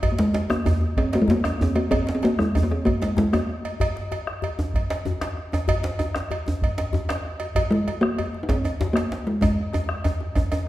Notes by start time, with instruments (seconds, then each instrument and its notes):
0.03 bombo low, cowbell, djembe bass
0.12 talking drum A#3
0.19 talking drum G#3, bombo rim, djembe slap
0.34 cowbell, djembe slap, djembe tone
0.50 talking drum A#3, bombo rim, djembe tone
0.66 cowbell, djembe bass
0.81 djembe tone
0.97 talking drum C4, bombo low, cowbell
1.13 talking drum A#3, cowbell, djembe slap
1.22 talking drum G#3
1.28 talking drum A#3, djembe slap, djembe tone, djembe bass
1.44 bombo rim, cowbell, djembe tone
1.60 talking drum C4, bombo rim, djembe bass
1.75 talking drum A#3, cowbell, djembe tone
1.91 talking drum C4, bombo low, cowbell, djembe bass
2.07 djembe slap
2.09 djembe slap
2.15 talking drum C4
2.23 talking drum A#3, bombo rim, cowbell, djembe slap, djembe tone
2.25 djembe slap
2.39 talking drum G#3, bombo rim, djembe slap, djembe tone
2.55 bombo rim, cowbell, djembe bass
2.63 talking drum A#3
2.71 talking drum C4, bombo rim, djembe slap, djembe tone
2.85 talking drum A#3, bombo low, cowbell
3.02 talking drum G#3, bombo rim, cowbell, djembe slap
3.17 talking drum G#3, bombo rim, djembe slap, djembe tone, djembe bass
3.33 talking drum A#3, bombo rim, cowbell, djembe tone
3.49 djembe slap
3.65 cowbell, djembe slap, djembe tone
3.80 bombo low, cowbell, djembe bass
3.96 bombo rim, djembe slap
4.12 cowbell, djembe tone
4.27 bombo rim
4.42 cowbell, djembe bass
4.59 djembe tone
4.74 bombo low, cowbell
4.90 cowbell, djembe slap
5.05 djembe tone, djembe bass
5.21 bombo rim, cowbell, djembe slap
5.37 bombo rim
5.52 cowbell, djembe tone
5.68 bombo low, cowbell, djembe bass
5.83 bombo rim, djembe slap
5.99 cowbell, djembe tone
6.15 bombo rim, djembe slap
6.31 cowbell, djembe bass
6.46 djembe tone
6.62 bombo low, cowbell
6.78 cowbell, djembe slap
6.93 djembe tone, djembe bass
7.09 bombo rim, cowbell, djembe slap
7.25 bombo rim
7.40 cowbell, djembe tone
7.55 bombo low, cowbell, djembe bass
7.71 talking drum G#3, bombo rim, djembe slap
7.88 cowbell, djembe tone
8.01 talking drum A#3, bombo rim
8.18 cowbell, djembe bass
8.34 djembe tone
8.43 talking drum D#4
8.49 talking drum C4, bombo low, cowbell, djembe slap
8.64 cowbell, djembe tone
8.81 djembe slap, djembe tone, djembe bass
8.93 talking drum A#3, bombo rim, cowbell, djembe slap
9.12 bombo rim, djembe slap
9.27 talking drum G#3, djembe tone
9.41 talking drum G#3, bombo low, cowbell, djembe slap, djembe tone, djembe bass
9.73 bombo rim, cowbell, djembe slap, djembe tone
9.89 bombo rim, djembe slap
10.04 cowbell, djembe slap, djembe tone, djembe bass
10.20 djembe slap, djembe tone
10.35 bombo low, cowbell, djembe tone
10.52 cowbell, djembe slap, djembe tone